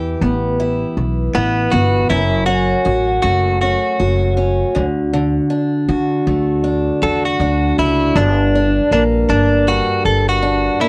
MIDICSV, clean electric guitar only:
0, 0, Header, 1, 2, 480
1, 0, Start_track
1, 0, Tempo, 756620
1, 1335, Time_signature, 4, 2, 24, 8
1, 6906, End_track
2, 0, Start_track
2, 0, Title_t, "Clean electric guitar"
2, 0, Program_c, 0, 27
2, 856, Note_on_c, 0, 59, 96
2, 1089, Note_on_c, 0, 66, 100
2, 1103, Note_off_c, 0, 59, 0
2, 1328, Note_off_c, 0, 66, 0
2, 1331, Note_on_c, 0, 64, 95
2, 1556, Note_off_c, 0, 64, 0
2, 1562, Note_on_c, 0, 66, 113
2, 2038, Note_off_c, 0, 66, 0
2, 2046, Note_on_c, 0, 66, 103
2, 2274, Note_off_c, 0, 66, 0
2, 2293, Note_on_c, 0, 66, 98
2, 2750, Note_off_c, 0, 66, 0
2, 4460, Note_on_c, 0, 69, 89
2, 4599, Note_off_c, 0, 69, 0
2, 4601, Note_on_c, 0, 66, 93
2, 4939, Note_off_c, 0, 66, 0
2, 4941, Note_on_c, 0, 64, 89
2, 5180, Note_on_c, 0, 62, 110
2, 5187, Note_off_c, 0, 64, 0
2, 5656, Note_off_c, 0, 62, 0
2, 5663, Note_on_c, 0, 62, 92
2, 5727, Note_off_c, 0, 62, 0
2, 5898, Note_on_c, 0, 62, 99
2, 6142, Note_on_c, 0, 66, 111
2, 6145, Note_off_c, 0, 62, 0
2, 6363, Note_off_c, 0, 66, 0
2, 6379, Note_on_c, 0, 69, 94
2, 6524, Note_off_c, 0, 69, 0
2, 6527, Note_on_c, 0, 66, 102
2, 6856, Note_off_c, 0, 66, 0
2, 6859, Note_on_c, 0, 64, 105
2, 6906, Note_off_c, 0, 64, 0
2, 6906, End_track
0, 0, End_of_file